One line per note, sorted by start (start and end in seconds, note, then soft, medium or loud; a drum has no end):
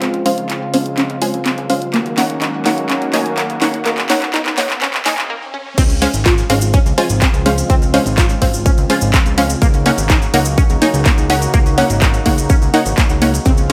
0.00 0.31 C#2 loud
0.00 1.90 C#3 medium
0.00 1.90 F3 medium
0.00 1.90 G#3 medium
0.00 1.90 C4 medium
0.00 0.07 C4 loud
0.00 1.90 F4 medium
0.00 clap medium
0.00 closed hi-hat medium
0.00 riser medium
0.14 closed hi-hat soft
0.26 0.32 G#3 medium
0.26 0.32 C#4 medium
0.26 0.31 C#4 medium
0.26 0.32 C5 medium
0.26 0.32 F5 loud
0.26 open hi-hat loud
0.38 0.67 G#1 medium
0.38 closed hi-hat medium
0.50 0.58 F4 medium
0.50 clap medium
0.50 closed hi-hat medium
0.74 1.03 G#1 loud
0.74 0.80 G#3 medium
0.74 0.77 C4 medium
0.74 0.80 C#4 medium
0.74 0.80 C5 medium
0.74 0.80 F5 medium
0.74 open hi-hat loud
0.86 closed hi-hat soft
0.98 1.03 C#4 medium
0.98 clap medium
0.98 closed hi-hat medium
1.10 1.18 C#2 loud
1.10 closed hi-hat soft
1.22 1.28 G#3 medium
1.22 1.28 C#4 medium
1.22 1.30 F4 medium
1.22 1.28 C5 medium
1.22 1.28 G#5 loud
1.22 open hi-hat loud
1.34 1.42 C#2 medium
1.34 closed hi-hat medium
1.46 1.51 C4 medium
1.46 clap medium
1.46 closed hi-hat medium
1.58 1.87 C#2 loud
1.58 closed hi-hat soft
1.70 1.76 G#3 medium
1.70 1.73 C#4 medium
1.70 1.76 C#4 medium
1.70 1.76 C5 medium
1.70 1.76 F5 loud
1.70 open hi-hat loud
1.82 closed hi-hat soft
1.94 2.23 C#2 loud
1.94 5.26 D#3 medium
1.94 5.26 F#3 medium
1.94 1.99 A#3 loud
1.94 5.26 A#3 medium
1.94 5.26 C#4 medium
1.94 5.26 F#4 medium
1.94 clap medium
1.94 closed hi-hat medium
2.06 closed hi-hat soft
2.18 2.24 A#3 medium
2.18 2.23 C#4 medium
2.18 2.24 D#4 medium
2.18 2.24 C#5 medium
2.18 2.24 F#5 loud
2.18 clap medium
2.18 open hi-hat loud
2.30 2.59 G#1 medium
2.30 closed hi-hat medium
2.42 2.50 D#4 medium
2.42 clap medium
2.42 closed hi-hat medium
2.66 2.95 C#2 medium
2.66 2.69 A#3 medium
2.66 2.72 A#3 medium
2.66 2.72 D#4 medium
2.66 2.72 C#5 medium
2.66 2.72 F#5 medium
2.66 clap medium
2.66 open hi-hat loud
2.78 closed hi-hat soft
2.90 2.95 C#4 medium
2.90 clap medium
2.90 closed hi-hat medium
3.02 3.10 C#2 loud
3.02 closed hi-hat soft
3.14 3.20 A#3 medium
3.14 3.20 D#4 medium
3.14 3.22 D#4 medium
3.14 3.20 C#5 medium
3.14 3.20 G#5 loud
3.14 clap medium
3.14 open hi-hat loud
3.26 3.34 C#2 medium
3.26 closed hi-hat medium
3.38 3.43 A#3 medium
3.38 clap medium
3.38 closed hi-hat medium
3.50 3.79 C#2 loud
3.50 closed hi-hat soft
3.62 3.68 A#3 medium
3.62 3.65 C#4 medium
3.62 3.68 D#4 medium
3.62 3.68 C#5 medium
3.62 3.68 F#5 medium
3.62 clap medium
3.62 open hi-hat loud
3.74 closed hi-hat medium
3.86 4.15 C#2 loud
3.86 3.91 A#3 loud
3.86 clap medium
3.86 closed hi-hat medium
3.98 clap medium
3.98 closed hi-hat soft
4.10 4.16 A#3 loud
4.10 4.15 C#4 medium
4.10 4.16 D#4 medium
4.10 4.16 C#5 medium
4.10 4.16 F#5 loud
4.10 clap loud
4.10 open hi-hat loud
4.22 4.51 G#1 medium
4.22 clap medium
4.22 closed hi-hat medium
4.34 4.42 D#4 medium
4.34 clap loud
4.34 closed hi-hat medium
4.46 clap medium
4.46 closed hi-hat soft
4.58 4.87 C#2 loud
4.58 4.64 A#3 medium
4.58 4.61 A#3 medium
4.58 4.64 D#4 medium
4.58 4.64 C#5 medium
4.58 4.64 F#5 medium
4.58 clap loud
4.58 open hi-hat loud
4.70 clap medium
4.70 closed hi-hat soft
4.82 4.87 C#4 medium
4.82 clap loud
4.82 closed hi-hat medium
4.94 5.02 C#2 loud
4.94 clap medium
4.94 closed hi-hat soft
5.06 5.12 A#3 medium
5.06 5.12 D#4 medium
5.06 5.14 D#4 medium
5.06 5.12 C#5 medium
5.06 5.12 G#5 loud
5.06 clap loud
5.06 open hi-hat loud
5.18 5.30 C#2 loud
5.18 clap medium
5.18 closed hi-hat medium
5.30 5.35 A#3 medium
5.54 5.57 C#4 medium
5.78 6.07 C#2 loud
5.78 13.42 C#3 medium
5.78 9.58 F3 medium
5.78 9.58 G#3 medium
5.78 9.58 C4 medium
5.78 5.83 C4 loud
5.78 9.58 F4 medium
5.78 kick loud
5.78 closed hi-hat loud
5.78 crash loud
5.78 ride medium
5.78 cabasa medium
5.90 closed hi-hat soft
5.90 cabasa soft
6.02 6.08 G#3 medium
6.02 6.08 C#4 medium
6.02 6.07 C#4 medium
6.02 6.08 C5 medium
6.02 6.08 F5 loud
6.02 open hi-hat loud
6.02 ride medium
6.14 6.43 G#1 medium
6.14 closed hi-hat soft
6.14 cabasa medium
6.26 6.34 F4 medium
6.26 kick loud
6.26 clap loud
6.26 closed hi-hat loud
6.26 ride medium
6.26 cabasa medium
6.38 closed hi-hat soft
6.38 cabasa soft
6.50 6.79 G#1 loud
6.50 6.56 G#3 medium
6.50 6.53 C4 medium
6.50 6.56 C#4 medium
6.50 6.56 C5 medium
6.50 6.56 F5 medium
6.50 open hi-hat loud
6.50 ride medium
6.61 closed hi-hat soft
6.61 cabasa medium
6.73 6.79 C#4 medium
6.73 kick loud
6.73 closed hi-hat medium
6.73 ride medium
6.73 cabasa medium
6.86 6.94 C#2 loud
6.86 closed hi-hat soft
6.86 cabasa soft
6.98 7.04 G#3 medium
6.98 7.04 C#4 medium
6.98 7.06 F4 medium
6.98 7.04 C5 medium
6.98 7.04 G#5 loud
6.98 open hi-hat loud
6.98 ride medium
7.10 7.26 G#1 loud
7.10 closed hi-hat soft
7.10 cabasa medium
7.22 7.27 C4 medium
7.22 kick loud
7.22 clap loud
7.22 closed hi-hat loud
7.22 ride medium
7.22 cabasa medium
7.34 7.63 C#2 medium
7.34 closed hi-hat soft
7.34 cabasa soft
7.46 7.52 G#3 medium
7.46 7.52 C#4 medium
7.46 7.49 C#4 medium
7.46 7.52 C5 medium
7.46 7.52 F5 loud
7.46 open hi-hat loud
7.46 ride medium
7.58 closed hi-hat soft
7.58 cabasa medium
7.70 7.99 C#2 loud
7.70 7.75 C4 loud
7.70 kick loud
7.70 closed hi-hat loud
7.70 ride medium
7.70 cabasa medium
7.82 closed hi-hat soft
7.82 cabasa soft
7.94 8.00 G#3 medium
7.94 7.99 C#4 medium
7.94 8.00 C#4 medium
7.94 8.00 C5 medium
7.94 8.00 F5 loud
7.94 open hi-hat loud
7.94 ride medium
8.06 8.35 G#1 medium
8.06 closed hi-hat soft
8.06 cabasa medium
8.18 8.26 F4 medium
8.18 kick loud
8.18 clap loud
8.18 closed hi-hat medium
8.18 ride medium
8.18 cabasa medium
8.29 closed hi-hat soft
8.29 cabasa soft
8.42 8.71 G#1 loud
8.42 8.48 G#3 medium
8.42 8.45 C4 medium
8.42 8.48 C#4 medium
8.42 8.48 C5 medium
8.42 8.48 F5 medium
8.42 kick medium
8.42 open hi-hat loud
8.42 ride medium
8.53 closed hi-hat soft
8.53 cabasa medium
8.66 8.71 C#4 medium
8.66 kick loud
8.66 closed hi-hat medium
8.66 ride medium
8.66 cabasa medium
8.78 8.86 C#2 loud
8.78 closed hi-hat soft
8.78 cabasa soft
8.90 8.96 G#3 medium
8.90 8.96 C#4 medium
8.90 8.98 F4 medium
8.90 8.96 C5 medium
8.90 8.96 G#5 loud
8.90 open hi-hat loud
8.90 ride medium
9.01 9.18 G#1 loud
9.01 closed hi-hat soft
9.01 cabasa medium
9.14 9.19 C4 medium
9.14 kick loud
9.14 clap loud
9.14 closed hi-hat loud
9.14 ride medium
9.14 cabasa medium
9.26 9.55 C#2 medium
9.26 closed hi-hat soft
9.26 cabasa soft
9.38 9.44 G#3 medium
9.38 9.41 C#4 medium
9.38 9.44 C#4 medium
9.38 9.44 C5 medium
9.38 9.44 F5 loud
9.38 open hi-hat loud
9.38 ride medium
9.50 closed hi-hat soft
9.50 cabasa medium
9.62 9.91 C#2 loud
9.62 13.42 F#3 medium
9.62 9.67 A#3 loud
9.62 13.42 A#3 medium
9.62 13.42 D#4 medium
9.62 13.42 F#4 medium
9.62 kick loud
9.62 closed hi-hat medium
9.62 ride medium
9.62 cabasa medium
9.74 closed hi-hat soft
9.74 cabasa soft
9.86 9.92 A#3 medium
9.86 9.91 C#4 medium
9.86 9.92 D#4 medium
9.86 9.92 C#5 medium
9.86 9.92 F#5 loud
9.86 open hi-hat loud
9.86 ride medium
9.98 10.27 G#1 medium
9.98 closed hi-hat soft
9.98 cabasa medium
10.10 10.18 D#4 medium
10.10 kick loud
10.10 clap loud
10.10 closed hi-hat medium
10.10 ride medium
10.10 cabasa medium
10.22 closed hi-hat soft
10.22 cabasa soft
10.34 10.63 C#2 loud
10.34 10.37 A#3 medium
10.34 10.40 A#3 medium
10.34 10.40 D#4 medium
10.34 10.40 C#5 medium
10.34 10.40 F#5 loud
10.34 open hi-hat loud
10.34 ride medium
10.45 closed hi-hat soft
10.45 cabasa medium
10.58 10.63 C#4 medium
10.58 kick loud
10.58 closed hi-hat medium
10.58 ride medium
10.58 cabasa medium
10.70 10.78 C#2 loud
10.70 closed hi-hat soft
10.70 cabasa soft
10.82 10.88 A#3 medium
10.82 10.90 D#4 medium
10.82 10.88 D#4 medium
10.82 10.88 C#5 medium
10.82 10.88 G#5 loud
10.82 open hi-hat loud
10.82 ride medium
10.94 11.10 C#2 loud
10.94 closed hi-hat soft
10.94 cabasa medium
11.06 11.11 A#3 medium
11.06 kick loud
11.06 clap loud
11.06 closed hi-hat medium
11.06 ride medium
11.06 cabasa medium
11.18 11.47 C#2 medium
11.18 closed hi-hat soft
11.18 cabasa soft
11.30 11.36 A#3 medium
11.30 11.33 C#4 medium
11.30 11.36 D#4 medium
11.30 11.36 C#5 medium
11.30 11.36 F#5 medium
11.30 open hi-hat loud
11.30 ride medium
11.42 closed hi-hat soft
11.42 cabasa medium
11.54 11.83 C#2 loud
11.54 11.59 A#3 loud
11.54 kick loud
11.54 closed hi-hat medium
11.54 ride medium
11.54 cabasa medium
11.66 closed hi-hat soft
11.66 cabasa soft
11.78 11.84 A#3 medium
11.78 11.83 C#4 medium
11.78 11.84 D#4 medium
11.78 11.84 C#5 medium
11.78 11.84 F#5 loud
11.78 open hi-hat loud
11.78 ride medium
11.90 12.19 G#1 medium
11.90 closed hi-hat soft
11.90 cabasa medium
12.02 12.10 D#4 medium
12.02 kick loud
12.02 clap loud
12.02 closed hi-hat medium
12.02 ride medium
12.02 cabasa medium
12.14 closed hi-hat soft
12.14 cabasa soft
12.26 12.55 C#2 loud
12.26 12.29 A#3 medium
12.26 12.32 A#3 medium
12.26 12.32 D#4 medium
12.26 12.32 C#5 medium
12.26 12.32 F#5 medium
12.26 kick medium
12.26 open hi-hat loud
12.26 ride medium
12.38 closed hi-hat soft
12.38 cabasa medium
12.49 12.55 C#4 medium
12.49 kick loud
12.49 closed hi-hat medium
12.49 ride medium
12.49 cabasa medium
12.62 12.70 C#2 loud
12.62 closed hi-hat soft
12.62 cabasa soft
12.74 12.80 A#3 loud
12.74 12.80 D#4 medium
12.74 12.82 D#4 medium
12.74 12.80 C#5 medium
12.74 12.80 F#5 loud
12.74 open hi-hat loud
12.74 ride medium
12.86 12.94 G#1 medium
12.86 closed hi-hat soft
12.86 cabasa medium
12.98 13.03 A#3 medium
12.98 kick loud
12.98 clap loud
12.98 closed hi-hat medium
12.98 ride medium
12.98 cabasa medium
13.09 13.39 C#2 medium
13.09 closed hi-hat soft
13.09 cabasa soft
13.22 13.31 A#3 medium
13.22 13.25 C#4 medium
13.22 13.31 D#4 medium
13.22 13.31 C#5 medium
13.22 13.31 F#5 medium
13.22 open hi-hat loud
13.22 ride medium
13.34 closed hi-hat soft
13.34 cabasa medium
13.45 13.72 C#2 loud
13.45 13.72 C#3 medium
13.45 13.72 F3 medium
13.45 13.72 G#3 medium
13.45 13.51 C4 loud
13.45 13.72 C4 medium
13.45 13.72 F4 medium
13.45 kick loud
13.45 closed hi-hat medium
13.45 ride medium
13.45 cabasa medium
13.57 closed hi-hat soft
13.57 cabasa soft